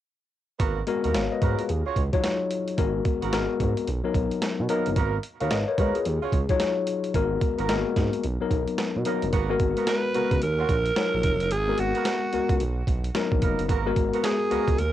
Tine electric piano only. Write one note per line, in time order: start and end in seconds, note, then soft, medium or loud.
0.87 1.35 G#3 medium
0.87 1.35 B3 medium
0.87 1.15 F#4 medium
0.87 1.15 A#4 loud
1.15 1.31 C#5 medium
1.15 1.31 F5 medium
1.32 1.41 B4 medium
1.32 1.42 D#5 medium
1.42 1.58 G#4 medium
1.42 1.58 B4 medium
1.59 1.85 F4 medium
1.59 1.85 G#4 medium
2.13 2.56 F#3 medium
2.13 2.57 D#4 medium
2.13 2.57 F4 medium
2.13 2.57 C#5 medium
2.78 3.16 G#3 medium
2.78 3.17 B3 medium
2.78 3.17 F#4 medium
2.78 3.17 A#4 medium
3.32 3.80 G#3 medium
3.32 3.80 B3 medium
3.32 3.81 F#4 medium
3.32 3.81 A#4 loud
4.04 4.47 F#3 medium
4.04 4.48 B3 medium
4.04 4.48 D#4 medium
4.04 4.48 A#4 medium
4.69 4.96 F#3 medium
4.69 4.96 B3 medium
4.69 4.96 D#4 medium
4.69 4.97 A#4 medium
5.41 5.51 C#5 soft
5.41 5.50 F5 medium
5.51 5.67 B4 medium
5.51 5.67 D#5 medium
5.68 5.78 A#4 medium
5.68 5.78 C#5 medium
5.79 5.94 G#4 medium
5.79 5.95 B4 medium
5.96 6.21 F4 medium
5.96 6.21 G#4 medium
6.49 6.93 F#3 medium
6.49 6.93 D#4 medium
6.49 6.93 F4 medium
6.49 6.93 C#5 loud
7.14 7.53 G#3 medium
7.14 7.53 B3 medium
7.14 7.53 F#4 medium
7.14 7.54 A#4 loud
7.69 8.17 G#3 medium
7.69 7.77 A#3 medium
7.69 8.17 F#4 medium
7.69 8.17 A#4 medium
7.76 8.20 B3 medium
8.41 8.84 F#3 medium
8.41 8.84 B3 medium
8.41 8.84 D#4 medium
8.41 8.84 A#4 medium
9.06 9.33 F#3 medium
9.06 9.33 B3 medium
9.06 9.33 D#4 medium
9.06 9.33 A#4 medium
9.50 9.93 G#3 medium
9.50 9.93 B3 medium
9.50 9.93 F#4 medium
9.50 9.94 A#4 loud
10.15 10.42 G#3 medium
10.15 10.42 B3 medium
10.15 10.42 F#4 medium
10.15 10.42 B4 medium
10.96 11.44 F#3 medium
10.96 11.44 D#4 medium
10.96 11.44 F4 medium
10.96 11.45 C#5 medium
11.68 12.11 G#3 medium
11.68 12.11 B3 medium
11.68 12.12 F#4 medium
11.68 12.12 A#4 medium
12.33 12.60 G#3 medium
12.33 12.60 B3 medium
12.33 12.60 F#4 medium
12.33 12.61 A#4 medium
13.15 13.62 F#3 medium
13.15 13.62 B3 medium
13.15 13.63 D#4 medium
13.15 13.63 A#4 medium
13.86 14.29 G#3 medium
13.86 14.29 B3 medium
13.86 14.30 F#4 medium
13.86 14.30 A#4 loud
14.51 14.78 G#3 medium
14.51 14.78 B3 medium
14.51 14.78 F#4 medium
14.51 14.79 A#4 medium